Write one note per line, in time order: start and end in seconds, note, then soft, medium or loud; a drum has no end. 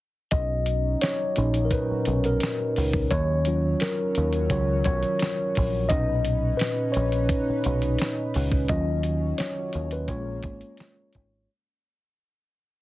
0.31 0.94 B1 medium
0.31 3.08 F#3 medium
0.31 3.08 C#4 medium
0.31 3.08 D#4 medium
0.31 1.04 D#5 medium
0.31 kick loud
0.31 closed hi-hat medium
0.66 closed hi-hat medium
1.01 1.67 C#5 medium
1.01 snare loud
1.01 closed hi-hat medium
1.36 1.68 A#1 medium
1.36 2.37 A#2 medium
1.36 2.38 C#4 soft
1.36 2.38 D#4 medium
1.36 closed hi-hat medium
1.54 closed hi-hat soft
1.65 1.72 A#4 medium
1.71 2.27 B4 medium
1.71 kick medium
1.71 closed hi-hat medium
1.91 muted picked electric bass stroke soft
2.05 2.38 B1 medium
2.05 closed hi-hat medium
2.24 2.73 A#4 medium
2.24 closed hi-hat soft
2.40 snare loud
2.40 closed hi-hat medium
2.76 3.08 C#2 medium
2.76 open hi-hat soft
2.93 kick medium
3.11 3.74 D#2 loud
3.11 5.88 D#3 medium
3.11 5.88 F#3 medium
3.11 5.88 C#4 medium
3.11 3.83 C#5 loud
3.11 kick loud
3.11 closed hi-hat medium
3.45 4.50 F#3 medium
3.45 4.50 C#4 soft
3.45 4.51 F4 medium
3.45 closed hi-hat medium
3.80 4.53 A#4 medium
3.80 snare loud
3.80 closed hi-hat medium
4.15 4.48 D#2 medium
4.15 closed hi-hat medium
4.33 closed hi-hat soft
4.50 4.82 C#2 loud
4.50 4.83 F#3 soft
4.50 4.83 C#4 soft
4.50 4.83 F4 medium
4.50 4.84 C#5 medium
4.50 kick medium
4.50 closed hi-hat medium
4.84 5.02 B1 medium
4.84 5.51 C#5 medium
4.84 kick medium
4.84 closed hi-hat medium
5.03 closed hi-hat soft
5.19 snare loud
5.19 closed hi-hat medium
5.55 5.88 A#1 medium
5.55 kick medium
5.55 open hi-hat soft
5.89 6.53 B1 medium
5.89 8.65 A#2 medium
5.89 8.66 C#4 medium
5.89 8.65 C#4 medium
5.89 8.66 D#4 medium
5.89 8.67 B4 medium
5.89 6.61 D#5 loud
5.89 kick loud
5.89 closed hi-hat medium
6.25 closed hi-hat medium
6.57 6.91 B4 medium
6.57 closed hi-hat medium
6.61 snare loud
6.92 8.29 C#5 medium
6.92 closed hi-hat medium
6.96 7.27 A#1 medium
7.12 closed hi-hat soft
7.29 kick medium
7.29 closed hi-hat medium
7.50 muted picked electric bass stroke soft
7.64 7.96 B1 medium
7.64 closed hi-hat medium
7.82 closed hi-hat soft
7.99 snare loud
7.99 closed hi-hat medium
8.34 8.66 C#2 medium
8.34 open hi-hat soft
8.52 kick medium
8.68 9.32 D#2 loud
8.68 10.08 D#3 medium
8.68 10.08 F#3 medium
8.68 10.05 F#3 medium
8.68 11.46 C#4 medium
8.68 10.05 C#4 soft
8.68 10.06 F4 medium
8.68 9.41 D#5 loud
8.68 kick loud
8.68 closed hi-hat medium
9.03 closed hi-hat medium
9.38 9.94 C#5 medium
9.38 snare loud
9.38 closed hi-hat medium
9.73 10.06 D#2 medium
9.73 closed hi-hat medium
9.91 10.08 B4 medium
9.91 closed hi-hat soft
10.08 10.40 A#1 loud
10.08 11.47 G#3 medium
10.08 11.09 G#3 medium
10.08 11.46 A#3 medium
10.08 11.10 C#4 soft
10.08 11.10 F4 medium
10.08 11.09 C#5 medium
10.08 kick medium
10.08 closed hi-hat medium
10.43 10.61 G#1 medium
10.43 kick medium
10.43 closed hi-hat medium
10.61 closed hi-hat soft
10.77 snare loud
10.77 closed hi-hat medium
11.13 11.46 G#1 medium
11.13 kick medium
11.13 closed hi-hat medium